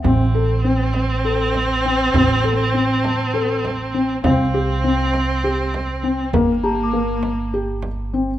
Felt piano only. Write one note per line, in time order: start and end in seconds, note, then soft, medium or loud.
0.04 0.21 C4 medium
0.34 0.51 A4 medium
0.64 0.97 C4 medium
1.24 1.57 A4 medium
1.85 2.01 C4 medium
2.15 2.31 C4 medium
2.44 2.60 A4 medium
2.74 3.07 C4 medium
3.34 3.66 A4 medium
3.94 4.10 C4 medium
4.24 4.40 C4 medium
4.54 4.70 G4 medium
4.84 5.16 C4 medium
5.44 5.76 G4 medium
6.03 6.20 C4 medium
6.34 6.50 A#3 medium
6.64 6.80 G4 medium
6.93 7.26 A#3 medium
7.54 7.86 G4 medium
8.13 8.30 C4 medium